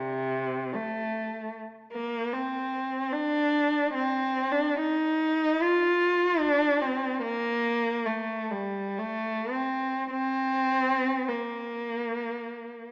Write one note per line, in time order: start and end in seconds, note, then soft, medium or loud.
0.00 0.76 C3 medium
0.75 1.55 A3 medium
1.93 2.30 A#3 medium
2.33 3.13 C4 medium
3.12 3.96 D4 medium
3.94 4.50 C4 medium
4.52 4.80 D4 medium
4.80 5.62 D#4 medium
5.62 6.44 F4 medium
6.41 6.82 D4 medium
6.82 7.23 C4 medium
7.22 8.06 A#3 medium
8.06 8.53 A3 medium
8.51 9.00 G3 medium
8.99 9.52 A3 medium
9.51 10.09 C4 medium
10.11 11.27 C4 loud
11.29 12.92 A#3 medium